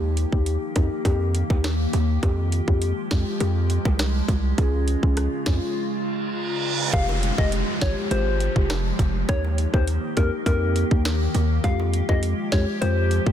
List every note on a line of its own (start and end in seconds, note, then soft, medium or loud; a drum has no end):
0.00 0.26 D#2 loud
0.00 2.21 D#3 medium
0.00 0.29 A#3 loud
0.00 2.21 A#3 medium
0.00 0.29 D#4 medium
0.00 0.29 G4 loud
0.00 4.54 G4 medium
0.17 closed hi-hat medium
0.32 0.57 D#2 loud
0.32 0.72 A#3 medium
0.32 0.72 D#4 medium
0.32 0.73 G4 medium
0.32 kick loud
0.46 closed hi-hat medium
0.75 0.89 F2 medium
0.75 1.03 A#3 medium
0.75 1.03 D#4 medium
0.75 1.03 G4 medium
0.75 kick loud
0.75 closed hi-hat medium
0.75 low bongo medium
1.05 1.43 F2 loud
1.05 1.46 A#3 medium
1.05 1.46 D#4 medium
1.05 1.47 G4 loud
1.05 kick medium
1.05 closed hi-hat medium
1.05 high bongo medium
1.35 closed hi-hat medium
1.50 1.87 D#2 medium
1.50 1.67 A#3 medium
1.50 1.67 D#4 medium
1.50 1.67 G4 medium
1.50 kick medium
1.50 high bongo medium
1.64 cross-stick medium
1.64 snare loud
1.64 closed hi-hat medium
1.64 high bongo medium
1.93 2.18 D#2 loud
1.93 closed hi-hat medium
1.93 low bongo medium
2.23 2.61 F2 loud
2.23 4.56 F3 medium
2.23 2.64 G#3 medium
2.23 6.89 G#3 medium
2.23 2.64 F4 medium
2.23 2.64 G4 loud
2.23 kick loud
2.23 closed hi-hat medium
2.23 high bongo medium
2.52 closed hi-hat medium
2.67 2.93 F2 medium
2.67 3.08 G#3 medium
2.67 3.08 F4 medium
2.67 3.08 G4 medium
2.67 kick medium
2.82 closed hi-hat medium
3.11 3.24 F2 loud
3.11 3.38 G#3 medium
3.11 3.38 F4 medium
3.11 3.38 G4 medium
3.11 kick loud
3.11 snare loud
3.11 closed hi-hat medium
3.11 low bongo medium
3.40 3.79 F2 loud
3.40 3.82 G#3 loud
3.40 3.82 F4 medium
3.40 3.82 G4 loud
3.40 closed hi-hat medium
3.40 high bongo medium
3.70 closed hi-hat medium
3.85 4.22 C2 medium
3.85 4.02 G#3 medium
3.85 4.03 F4 medium
3.85 4.03 G4 medium
3.85 kick medium
3.85 high bongo medium
3.99 cross-stick medium
3.99 snare loud
3.99 closed hi-hat medium
3.99 high bongo medium
4.28 4.53 C2 loud
4.28 kick medium
4.28 closed hi-hat medium
4.28 low bongo medium
4.58 4.96 C#2 loud
4.58 6.91 C#3 medium
4.58 4.99 C#4 loud
4.58 6.91 F4 medium
4.58 4.99 F4 medium
4.58 5.00 G#4 loud
4.58 kick loud
4.58 closed hi-hat medium
4.58 high bongo medium
4.88 closed hi-hat medium
5.03 5.28 C#2 loud
5.03 5.43 C#4 medium
5.03 5.43 F4 medium
5.03 5.43 G#4 medium
5.03 kick loud
5.17 cross-stick medium
5.17 closed hi-hat medium
5.46 5.60 F2 loud
5.46 5.73 C#4 medium
5.46 5.74 F4 medium
5.46 5.74 G#4 medium
5.46 kick loud
5.46 snare loud
5.46 closed hi-hat medium
5.46 low bongo medium
5.76 reverse cymbal medium
6.93 7.31 F1 loud
6.93 9.26 F3 medium
6.93 7.35 G#3 loud
6.93 9.26 G#3 medium
6.93 7.35 F4 medium
6.93 9.26 G4 medium
6.93 7.35 G4 loud
6.93 7.06 F5 loud
6.93 kick loud
6.93 closed hi-hat medium
6.93 downlifter medium
6.93 high bongo medium
7.09 high bongo medium
7.23 closed hi-hat medium
7.38 7.63 F1 loud
7.38 7.78 G#3 medium
7.38 7.78 F4 medium
7.38 7.79 G4 medium
7.38 7.50 D#5 medium
7.38 kick medium
7.38 high bongo medium
7.52 closed hi-hat medium
7.81 7.95 G#1 medium
7.81 8.09 G#3 medium
7.81 8.09 F4 medium
7.81 8.09 G4 medium
7.81 7.94 C#5 medium
7.81 kick loud
7.81 snare loud
7.81 closed hi-hat medium
7.81 high bongo medium
8.11 8.49 G#1 loud
8.11 8.52 G#3 loud
8.11 8.52 F4 medium
8.11 8.53 G4 loud
8.11 8.53 C5 loud
8.11 closed hi-hat medium
8.11 high bongo medium
8.40 closed hi-hat medium
8.56 8.93 F1 loud
8.56 8.73 G#3 medium
8.56 8.73 F4 medium
8.56 8.73 G4 medium
8.56 kick loud
8.70 cross-stick medium
8.70 snare loud
8.70 closed hi-hat medium
8.70 high bongo medium
8.99 9.24 F1 medium
8.99 kick medium
8.99 closed hi-hat medium
8.99 low bongo medium
9.28 9.67 D#2 loud
9.28 11.62 D#3 medium
9.28 9.70 A#3 loud
9.28 11.62 A#3 medium
9.28 9.70 D#4 medium
9.28 11.62 G4 medium
9.28 9.70 G4 loud
9.28 9.41 C#5 loud
9.28 kick loud
9.28 closed hi-hat medium
9.28 high bongo medium
9.44 high bongo medium
9.58 closed hi-hat medium
9.74 9.99 D#2 loud
9.74 10.14 A#3 medium
9.74 10.14 D#4 medium
9.74 10.14 G4 medium
9.74 9.85 C5 medium
9.74 kick loud
9.74 high bongo medium
9.87 closed hi-hat medium
10.17 10.30 F2 medium
10.17 10.44 A#3 medium
10.17 10.44 D#4 medium
10.17 10.44 G4 medium
10.17 10.30 A#4 medium
10.17 kick loud
10.17 closed hi-hat medium
10.17 high bongo medium
10.46 10.84 F2 loud
10.46 10.88 A#3 loud
10.46 10.88 D#4 medium
10.46 10.88 G4 loud
10.46 10.89 A#4 loud
10.46 kick medium
10.46 closed hi-hat medium
10.46 high bongo medium
10.76 closed hi-hat medium
10.91 11.28 D#2 loud
10.91 11.08 A#3 medium
10.91 11.08 D#4 medium
10.91 11.08 G4 medium
10.91 kick loud
11.05 cross-stick medium
11.05 snare loud
11.05 closed hi-hat medium
11.05 high bongo medium
11.35 11.60 D#2 loud
11.35 closed hi-hat medium
11.35 low bongo medium
11.64 12.02 F2 loud
11.64 13.32 F3 medium
11.64 12.05 G#3 loud
11.64 13.32 G#3 medium
11.64 12.05 F4 medium
11.64 13.32 G4 medium
11.64 12.05 G4 loud
11.64 11.77 F5 medium
11.64 kick loud
11.64 closed hi-hat medium
11.64 high bongo medium
11.80 high bongo medium
11.94 closed hi-hat medium
12.09 12.34 F2 medium
12.09 12.49 G#3 medium
12.09 12.49 F4 medium
12.09 12.49 G4 medium
12.09 12.20 D#5 medium
12.09 kick medium
12.09 high bongo medium
12.23 closed hi-hat medium
12.52 12.65 F2 loud
12.52 12.79 G#3 medium
12.52 12.79 F4 medium
12.52 12.80 G4 medium
12.52 12.65 C#5 medium
12.52 kick loud
12.52 snare loud
12.52 closed hi-hat medium
12.52 high bongo medium
12.81 13.20 F2 loud
12.81 13.23 G#3 loud
12.81 13.23 F4 medium
12.81 13.23 G4 loud
12.81 13.24 C5 loud
12.81 closed hi-hat medium
12.81 high bongo medium
13.11 closed hi-hat medium
13.26 13.32 C2 medium
13.26 13.32 G#3 medium
13.26 13.32 F4 medium
13.26 13.32 G4 medium
13.26 kick medium